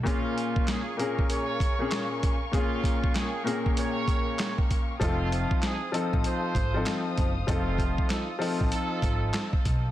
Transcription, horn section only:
X:1
M:4/4
L:1/16
Q:"Swing 16ths" 1/4=97
K:Bbdor
V:1 name="Horn section"
[B,DF]4 [DFA]2 [DFB]2 [ABd]4- [ABd] z3 | [B,DF]4 [DFA]2 [DFB]2 [ABd]4- [ABd] z3 | [=A,CF]4 [CE_A]2 [EF=A]2 [FAc]4- [FAc] z3 | [=A,CF]4 [EF=A]2 [A,CF]2 [EFA]4- [EFA] z3 |]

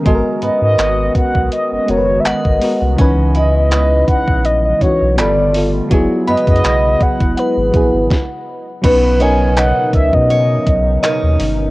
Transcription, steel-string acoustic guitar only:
X:1
M:4/4
L:1/8
Q:"Swing 16ths" 1/4=82
K:B
V:1 name="Steel-string acoustic guitar"
G, B, F6 | C E B4 =G,2 | F, B, E4 z2 | [B,c] [DAc] D2 c2 [DAc]2 |]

